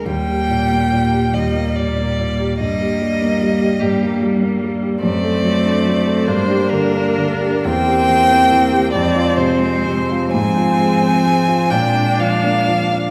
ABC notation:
X:1
M:6/8
L:1/16
Q:3/8=47
K:Eb
V:1 name="Violin"
g6 e2 d4 | e6 G2 z4 | d6 c2 B4 | g6 d2 c4 |
a6 g2 f4 |]
V:2 name="Viola"
B,6 B,6 | B,6 B,6 | C6 D6 | C6 C6 |
C6 D6 |]
V:3 name="Grand piano"
E,, G B,, B, B,, G E,, B, B,, B, B,, G | G,, G G, B, G, G G,, B, G, B, G, G | ^F,, =A ^F, D F, A G,, G D, D D, G | =E,, G =E, C E, G F,, F C, C C, F |
A,, F A, C A, F B,, D F, B, F, D |]
V:4 name="Cello" clef=bass
G,6 G,6 | G,6 G,6 | =A,6 B,6 | B,6 A,6 |
F,6 A,6 |]